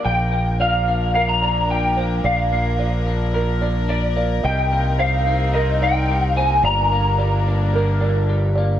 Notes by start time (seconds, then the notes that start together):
0.05 A#1 A#2 F3 A#3 D4 A#4 F5 G5
0.32 A#3
0.60 F3 D5 F5
0.88 D4
1.14 A#4 F5
1.28 A#5
1.42 D4 D5
1.70 F3 G5
1.96 A#3 C5
2.24 A#1 A#2 D5 F5
2.52 A#3
2.79 F3 D5
3.06 D4
3.34 A#4
3.61 D4 D5
3.89 F3 D5
4.16 A#3 D5
4.43 C2 C3 G3 C4 D#4 D#5 G5
4.72 A#3
4.99 G3 C5 F5
5.26 D#4
5.54 A#4 D#5
5.81 D#4 D5 G5
6.10 G3
6.36 A#3 C5 G#5
6.63 G1 G2 A#3 D4 D5 A#5
6.92 A#3
7.18 G3 D5
7.48 D4
7.73 A#4
8.01 D4 D5
8.29 G3
8.55 A#3 D5